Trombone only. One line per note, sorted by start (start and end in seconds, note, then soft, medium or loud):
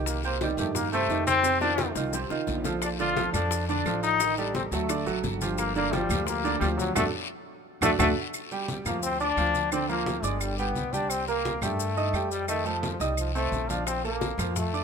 0.06 0.22 A#3 medium
0.24 0.40 A#3 medium
0.41 0.57 G3 medium
0.58 0.74 A3 medium
0.75 0.91 A#3 loud
0.92 1.24 A3 loud
1.27 1.59 C4 loud
1.61 1.94 D4 loud
2.82 2.90 D4 medium
2.99 3.31 F4 loud
3.33 3.65 D4 loud
3.69 4.00 D4 loud
4.03 4.35 D#4 loud
4.38 4.54 D4 medium
4.56 4.63 C4 medium
4.73 5.21 A3 medium
5.58 5.74 A#3 loud
5.75 5.94 A#3 loud
5.92 6.28 G3 medium
6.26 6.59 A#3 loud
6.60 6.68 G3 medium
6.77 6.94 F#3 medium
6.96 7.04 A3 loud
7.83 7.91 A3 loud
7.99 8.07 A3 loud
8.86 9.02 A#3 medium
9.03 9.19 C4 loud
9.20 9.68 D4 loud
9.72 9.88 C4 loud
9.89 10.25 A#3 loud
10.23 10.42 G#3 medium
10.40 10.57 G3 medium
10.58 10.94 B3 loud
10.93 11.11 D4 loud
11.10 11.27 C4 loud
11.28 11.63 A#3 loud
11.62 12.31 A3 loud
12.31 12.47 G3 loud
12.49 12.68 A3 loud
12.67 13.02 F3 medium
13.01 13.17 G3 medium
13.18 13.34 F3 medium
13.35 13.71 A3 loud
13.70 13.87 D4 medium
13.87 14.03 C4 loud
14.05 14.53 A#3 loud
14.57 14.84 A3 medium